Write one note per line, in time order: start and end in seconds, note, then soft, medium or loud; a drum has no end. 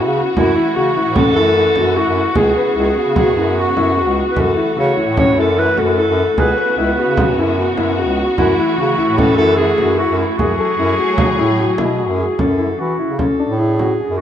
0.00 0.33 C#3 medium
0.00 0.33 B3 medium
0.00 0.11 E4 medium
0.00 6.32 F#4 medium
0.06 0.22 C#3 medium
0.17 0.28 F#4 medium
0.36 0.52 F#2 medium
0.36 2.34 E3 medium
0.36 2.35 A3 medium
0.36 0.78 E4 loud
0.36 0.48 F#4 medium
0.36 frame drum medium
0.56 0.67 E4 medium
0.56 frame drum soft
0.76 0.92 C#3 medium
0.76 0.87 F#4 medium
0.76 1.17 F#4 medium
0.76 frame drum soft
0.96 1.08 E4 medium
0.96 frame drum soft
1.06 1.37 A2 medium
1.16 1.28 C#4 medium
1.16 1.35 A4 loud
1.16 frame drum medium
1.36 1.68 F#2 medium
1.36 1.48 E4 medium
1.36 1.98 A4 loud
1.57 1.68 E4 medium
1.76 2.00 F#2 medium
1.76 1.88 F#4 medium
1.76 frame drum soft
1.97 2.08 E4 medium
1.97 2.38 F#4 medium
2.07 2.22 F#2 medium
2.17 2.28 E4 medium
2.35 2.52 C#2 medium
2.35 4.35 C#3 medium
2.35 4.35 B3 medium
2.35 2.47 G#4 medium
2.35 2.77 G#4 medium
2.35 frame drum medium
2.57 2.68 B4 medium
2.76 2.93 C#2 medium
2.76 2.87 E4 medium
2.76 3.14 G#4 medium
2.76 frame drum soft
2.97 3.08 F#4 medium
3.07 3.38 C#3 medium
3.16 3.28 F#4 medium
3.16 3.61 G#4 loud
3.16 frame drum medium
3.37 3.69 F#2 medium
3.37 3.48 E4 medium
3.58 3.69 F#4 medium
3.58 4.18 F#4 medium
3.77 4.08 F#2 medium
3.77 3.88 E4 medium
3.77 frame drum soft
3.96 4.09 F#4 medium
3.96 frame drum soft
4.07 4.23 C#2 medium
4.17 4.28 F#4 medium
4.31 4.41 B4 medium
4.36 4.53 F#2 medium
4.36 6.36 E3 medium
4.36 6.36 A3 medium
4.36 4.48 F#4 medium
4.36 4.78 A4 medium
4.36 frame drum medium
4.57 4.68 E4 medium
4.57 frame drum soft
4.77 4.93 C#3 medium
4.77 4.88 F#4 medium
4.77 5.16 C#5 medium
4.77 frame drum soft
4.97 5.08 E4 medium
4.97 frame drum soft
5.07 5.39 A2 medium
5.17 5.28 C#4 medium
5.17 5.37 C#5 loud
5.17 frame drum medium
5.38 5.69 F#2 medium
5.38 5.49 E4 medium
5.38 5.60 A4 loud
5.57 5.68 E4 medium
5.57 5.80 B4 loud
5.77 6.01 F#2 medium
5.77 5.88 F#4 medium
5.77 5.98 A4 medium
5.77 frame drum soft
5.98 6.09 E4 medium
5.98 6.40 A4 loud
6.08 6.24 F#2 medium
6.17 6.29 E4 medium
6.37 6.53 C#2 medium
6.37 8.36 C#3 medium
6.37 8.36 B3 medium
6.37 10.35 F#4 medium
6.37 6.49 G#4 medium
6.37 6.77 B4 loud
6.37 frame drum medium
6.58 6.69 B4 medium
6.58 frame drum soft
6.78 6.94 C#2 medium
6.78 6.89 E4 medium
6.78 7.34 B4 medium
6.78 frame drum soft
6.97 7.10 F#4 medium
6.97 frame drum soft
7.08 7.39 C#3 medium
7.17 7.30 F#4 medium
7.17 frame drum medium
7.38 7.70 F#2 loud
7.38 7.50 E4 medium
7.58 7.69 F#4 medium
7.78 8.09 F#2 medium
7.78 7.89 E4 medium
7.78 frame drum soft
7.99 8.10 F#4 medium
8.08 8.24 C#2 medium
8.19 8.30 F#4 medium
8.38 8.54 F#2 medium
8.38 10.37 E3 medium
8.38 10.37 A3 medium
8.38 8.79 E4 loud
8.38 8.49 F#4 medium
8.38 frame drum medium
8.58 8.70 E4 medium
8.58 frame drum soft
8.78 8.94 C#3 medium
8.78 9.19 F#4 medium
8.78 8.90 F#4 medium
8.78 frame drum soft
8.98 9.09 E4 medium
8.98 frame drum soft
9.09 9.41 A2 medium
9.18 9.29 C#4 medium
9.18 9.36 A4 loud
9.18 frame drum medium
9.37 9.71 F#2 medium
9.37 9.50 E4 medium
9.37 9.56 A4 loud
9.57 9.70 E4 medium
9.57 9.99 G#4 loud
9.78 10.03 F#2 medium
9.78 9.90 F#4 medium
9.78 frame drum soft
9.98 10.10 E4 medium
9.98 10.17 F#4 loud
10.09 10.25 F#2 medium
10.18 10.39 E4 medium
10.18 10.30 E4 medium
10.37 10.55 F#2 medium
10.37 12.37 F#3 medium
10.37 12.37 A3 medium
10.37 11.99 F#4 loud
10.37 12.37 G#4 medium
10.37 10.50 G#4 medium
10.37 frame drum medium
10.58 10.70 A4 medium
10.58 frame drum soft
10.79 10.94 F#2 medium
10.79 10.90 E4 medium
10.98 11.10 F#4 medium
11.09 11.41 F#3 medium
11.18 11.30 F#4 medium
11.18 frame drum medium
11.39 11.71 A2 loud
11.39 11.50 E4 medium
11.59 11.70 F#4 medium
11.78 12.10 B2 medium
11.78 11.90 E4 medium
11.78 frame drum medium
11.99 12.10 F#4 medium
12.09 12.25 F#2 medium
12.18 12.30 F#4 medium
12.18 12.37 G#4 medium
12.39 12.71 F#2 medium
12.39 12.50 C#4 medium
12.39 12.81 A4 medium
12.39 frame drum medium
12.59 12.70 E4 medium
12.59 frame drum soft
12.79 12.95 E3 medium
12.79 12.90 F#4 medium
12.79 13.20 F#4 medium
12.99 13.10 E4 medium
13.09 13.25 C#3 medium
13.19 13.31 C#4 medium
13.19 13.59 A4 medium
13.19 frame drum medium
13.39 13.51 D4 medium
13.48 13.96 A2 medium
13.58 13.70 E4 medium
13.58 14.19 G#4 medium
13.79 13.91 F#4 medium
13.79 frame drum soft
14.00 14.11 G#4 medium
14.00 frame drum soft
14.10 14.18 F#2 medium
14.17 14.21 F#4 medium